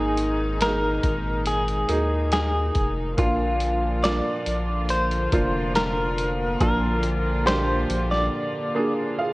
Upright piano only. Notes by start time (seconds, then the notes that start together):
Already playing: G#2 D#3 A#3 D#4 G#4
0.61 A#3 D#4 G#4
1.89 A#3 D#4 G#4
3.17 A#2 F3 A#3 D4 F4
4.03 A#3 D4 F4
5.32 A#3 D4 F4
6.61 A#2 F3 A#3 D4 F4
7.46 A#3 D4 G4
8.75 A#3 D4 G#4
9.19 G#4 F5